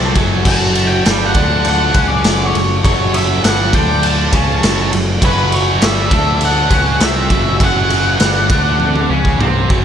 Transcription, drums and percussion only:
0.16 kick loud
0.16 ride medium
0.45 kick loud
0.45 crash loud
0.75 ride medium
1.06 snare loud
1.06 ride loud
1.34 kick loud
1.34 ride medium
1.64 ride loud
1.94 kick loud
1.94 ride medium
2.24 snare loud
2.24 ride medium
2.55 ride medium
2.85 kick loud
2.85 ride loud
3.14 ride medium
3.44 snare loud
3.44 ride loud
3.73 kick loud
3.73 ride medium
4.03 ride loud
4.33 kick loud
4.33 ride medium
4.63 snare loud
4.63 ride loud
4.93 ride medium
5.22 kick loud
5.22 ride loud
5.52 ride medium
5.82 snare loud
5.82 ride loud
6.11 kick loud
6.11 ride medium
6.41 ride loud
6.70 kick loud
6.70 ride medium
7.00 snare loud
7.00 ride loud
7.30 kick loud
7.30 ride medium
7.60 kick loud
7.60 ride loud
7.90 ride medium
8.20 snare loud
8.20 ride loud
8.50 kick loud
8.50 ride medium
8.80 high tom medium
8.95 high tom medium
9.25 kick medium
9.41 mid tom medium
9.70 kick loud

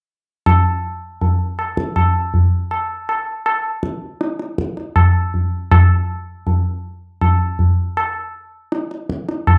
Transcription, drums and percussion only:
0.46 tabla na medium
0.46 tabla ge medium
1.21 tabla tin medium
1.21 tabla ge medium
1.59 tabla na soft
1.77 tabla ke soft
1.96 tabla na medium
1.96 tabla ge medium
2.34 tabla ge soft
2.71 tabla na medium
3.09 tabla na soft
3.46 tabla na medium
3.83 tabla ke medium
4.21 tabla te medium
4.39 tabla te soft
4.58 tabla ke soft
4.77 tabla te soft
4.96 tabla na medium
4.96 tabla ge medium
5.34 tabla ge soft
5.71 tabla na medium
5.71 tabla ge medium
6.47 tabla tin medium
6.47 tabla ge medium
7.21 tabla na medium
7.21 tabla ge medium
7.59 tabla ge soft
7.97 tabla na medium
8.72 tabla te medium
8.91 tabla te medium
9.09 tabla ke medium
9.29 tabla te soft
9.47 tabla na medium
9.47 tabla ge medium

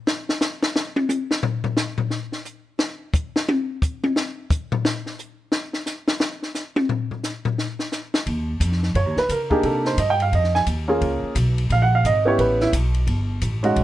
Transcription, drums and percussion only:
0.07 snare loud
0.29 snare medium
0.41 snare loud
0.41 hi-hat pedal medium
0.63 snare loud
0.76 snare loud
0.96 high tom loud
1.09 hi-hat pedal medium
1.09 high tom medium
1.31 snare medium
1.43 floor tom loud
1.64 floor tom medium
1.77 snare loud
1.77 hi-hat pedal medium
1.98 floor tom medium
2.10 snare medium
2.32 snare soft
2.45 hi-hat pedal medium
2.79 snare medium
3.14 kick medium
3.14 hi-hat pedal medium
3.36 snare loud
3.49 high tom loud
3.82 kick medium
3.82 hi-hat pedal medium
4.04 high tom medium
4.16 snare loud
4.50 kick medium
4.50 hi-hat pedal medium
4.72 floor tom loud
4.85 snare loud
5.06 snare soft
5.19 hi-hat pedal medium
5.52 snare loud
5.73 snare medium
5.86 snare soft
5.86 hi-hat pedal medium
6.08 snare loud
6.20 snare loud
6.43 snare soft
6.55 snare medium
6.55 hi-hat pedal medium
6.76 high tom loud
6.89 floor tom loud
7.11 floor tom medium
7.23 snare medium
7.23 hi-hat pedal medium
7.45 floor tom medium
7.58 snare medium
7.79 snare medium
7.92 snare medium
7.92 hi-hat pedal medium
8.14 snare loud
8.26 kick soft
8.26 ride medium
8.61 kick soft
8.61 hi-hat pedal medium
8.61 ride medium
8.72 snare soft
8.83 snare soft
8.95 kick soft
8.95 ride medium
9.17 snare soft
9.29 kick soft
9.29 hi-hat pedal soft
9.29 ride medium
9.51 kick medium
9.63 kick soft
9.63 ride medium
9.85 snare medium
9.98 kick soft
9.98 hi-hat pedal medium
9.98 ride medium
10.20 ride soft
10.32 kick soft
10.32 ride medium
10.44 snare soft
10.55 snare soft
10.66 kick soft
10.66 hi-hat pedal soft
10.66 ride medium
11.01 kick soft
11.01 ride medium
11.35 kick soft
11.35 hi-hat pedal medium
11.35 ride medium
11.58 ride soft
11.70 kick soft
11.70 ride medium
12.04 kick soft
12.04 hi-hat pedal medium
12.04 ride medium
12.39 kick soft
12.39 ride medium
12.60 snare soft
12.73 kick soft
12.73 hi-hat pedal medium
12.73 ride medium
12.94 ride soft
13.07 kick soft
13.07 ride medium
13.41 kick soft
13.41 hi-hat pedal medium
13.41 ride medium
13.64 ride soft
13.76 kick soft
13.76 ride medium

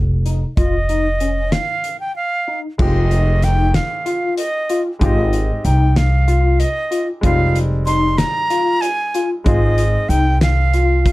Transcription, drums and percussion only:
0.26 closed hi-hat soft
0.57 kick loud
0.57 closed hi-hat medium
0.89 closed hi-hat soft
1.20 closed hi-hat soft
1.52 snare medium
1.52 closed hi-hat medium
1.84 closed hi-hat medium
2.79 kick loud
2.79 crash medium
3.11 closed hi-hat medium
3.42 snare soft
3.42 closed hi-hat medium
3.74 snare loud
3.74 closed hi-hat medium
4.06 closed hi-hat medium
4.38 closed hi-hat medium
4.69 closed hi-hat medium
5.01 kick loud
5.01 closed hi-hat medium
5.33 closed hi-hat soft
5.65 closed hi-hat soft
5.96 snare loud
5.96 closed hi-hat medium
6.28 closed hi-hat medium
6.60 closed hi-hat medium
6.92 closed hi-hat medium
7.23 kick loud
7.23 closed hi-hat medium
7.55 closed hi-hat medium
7.87 closed hi-hat medium
8.18 snare medium
8.18 closed hi-hat medium
8.50 closed hi-hat medium
8.82 closed hi-hat medium
9.14 closed hi-hat soft
9.46 kick loud
9.46 closed hi-hat medium
9.78 closed hi-hat medium
10.10 closed hi-hat medium
10.41 snare loud
10.41 closed hi-hat medium
10.73 closed hi-hat medium
11.06 kick medium
11.06 closed hi-hat medium

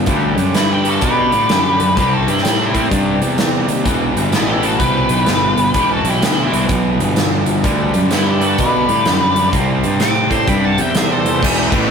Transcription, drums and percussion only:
0.06 kick loud
0.06 closed hi-hat medium
0.38 closed hi-hat medium
0.55 snare medium
0.55 closed hi-hat medium
0.85 closed hi-hat medium
1.01 kick loud
1.01 closed hi-hat medium
1.32 closed hi-hat medium
1.49 snare loud
1.49 closed hi-hat medium
1.80 closed hi-hat medium
1.97 kick loud
1.97 closed hi-hat medium
2.28 closed hi-hat medium
2.38 snare soft
2.45 snare medium
2.45 closed hi-hat medium
2.75 kick medium
2.75 closed hi-hat medium
2.91 kick loud
2.91 closed hi-hat medium
3.22 closed hi-hat medium
3.38 snare medium
3.38 closed hi-hat medium
3.68 closed hi-hat medium
3.86 kick loud
3.86 closed hi-hat medium
4.17 closed hi-hat medium
4.32 snare loud
4.32 closed hi-hat medium
4.63 closed hi-hat medium
4.80 kick loud
4.80 closed hi-hat medium
5.09 closed hi-hat medium
5.26 snare medium
5.26 closed hi-hat medium
5.58 closed hi-hat medium
5.74 kick loud
5.74 closed hi-hat medium
6.05 closed hi-hat medium
6.22 snare loud
6.22 closed hi-hat medium
6.54 closed hi-hat medium
6.69 kick loud
6.69 closed hi-hat medium
7.00 closed hi-hat medium
7.16 snare medium
7.16 closed hi-hat medium
7.46 closed hi-hat medium
7.64 kick loud
7.64 closed hi-hat medium
7.94 closed hi-hat medium
8.11 snare medium
8.11 closed hi-hat medium
8.41 closed hi-hat medium
8.58 kick loud
8.58 closed hi-hat medium
8.89 closed hi-hat medium
9.05 snare medium
9.05 closed hi-hat medium
9.36 closed hi-hat medium
9.53 kick loud
9.53 closed hi-hat medium
9.84 closed hi-hat medium
10.00 snare loud
10.00 closed hi-hat medium
10.31 kick medium
10.31 closed hi-hat medium
10.47 kick loud
10.47 closed hi-hat medium
10.78 closed hi-hat medium
10.95 snare medium
10.95 closed hi-hat medium
11.26 closed hi-hat medium
11.43 kick loud
11.43 crash loud
11.43 crash medium
11.72 kick loud
11.72 crash medium

